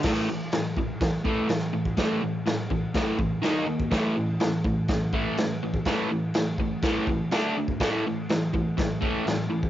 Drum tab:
CC |x---x---x---x---|x---x---x---x---|x---x---x---x---|x---x---x---x---|
SD |o---o---o---o---|o---o---o---o---|o---o---o---o---|o---o---o---o---|
BD |o-----o-o-o----o|o-----o-o-o----o|o-----o-o-o----o|o-----o-o-o----o|

CC |x---x---x---x---|
SD |o---o---o---o---|
BD |o-----o-o-o----o|